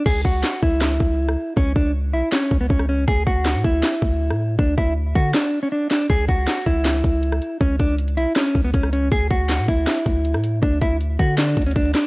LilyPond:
<<
  \new Staff \with { instrumentName = "Clean electric guitar" } { \time 4/4 \key cis \phrygian \tempo 4 = 159 gis'8 fis'4 e'2~ e'8 | cis'8 d'8 r8 e'8 cis'8. b16 cis'8 cis'8 | gis'8 fis'4 e'2~ e'8 | d'8 e'8 r8 fis'8 d'8. cis'16 d'8 d'8 |
gis'8 fis'4 e'2~ e'8 | cis'8 d'8 r8 e'8 cis'8. b16 cis'8 cis'8 | gis'8 fis'4 e'2~ e'8 | d'8 e'8 r8 fis'8 d'8. cis'16 d'8 d'8 | }
  \new Staff \with { instrumentName = "808-style bass" } { \clef bass \time 4/4 \key cis \phrygian cis,8 cis,8 r8 cis,4 cis,4 r8 | cis,8 cis,4 b,,16 r8. cis,8 cis,4 | d,8 d,8. a,16 d,8 r8 d,8. a,8. | d,8 d,4 d8 r2 |
cis,8 cis,8 r8 cis,4 cis,4 r8 | cis,8 cis,4 b,,16 r8. cis,8 cis,4 | d,8 d,8. a,16 d,8 r8 d,8. a,8. | d,8 d,4 d4 d,8 d,8 r8 | }
  \new DrumStaff \with { instrumentName = "Drums" } \drummode { \time 4/4 <cymc bd>8 bd8 <hc sn>8 bd8 <hc sn>8 bd8 r16 ss8. | bd8 bd8 r4 <hc sn>8 bd8 bd16 ss8. | bd8 bd8 <hc sn>8 bd8 <hc sn>8 bd8 r16 ss8. | bd8 bd8 r8 bd8 <hc sn>4 r8 <hc sn>8 |
<hh bd>8 <hh bd>8 <hc hh sn>32 hh32 hh32 hh32 <hh bd>8 <hc hh sn>8 <hh bd>8 hh16 ss16 hh8 | <hh bd>8 <hh bd>8 hh16 hh16 hh8 <hc hh sn>8 <hh bd>8 <hh bd>16 ss16 hh8 | <hh bd>8 <hh bd>8 <hc hh sn>32 hh32 hh32 hh32 <hh bd>8 <hc hh sn>8 <hh bd>8 hh16 ss16 hh8 | <hh bd>8 <hh bd>8 hh8 <hh bd>8 <hc hh sn>8 <hh bd>32 hh32 hh32 hh32 <hh bd>16 hh16 <hc hho sn>8 | }
>>